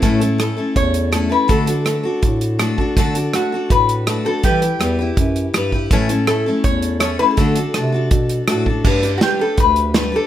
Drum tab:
CC |--------|--------|--------|--------|
HH |xxx-xxx-|xxx-xxx-|xxx-xxx-|xxx-xxx-|
SD |--r---r-|--r---r-|--r---r-|--r---r-|
BD |o---o---|o---o--o|o---o---|o---o--o|

CC |--------|--------|x-------|
HH |xxx-xxx-|xxx-xxx-|-xx-xxx-|
SD |--r---r-|--r---r-|--o---o-|
BD |o---o---|o---o--o|o---o---|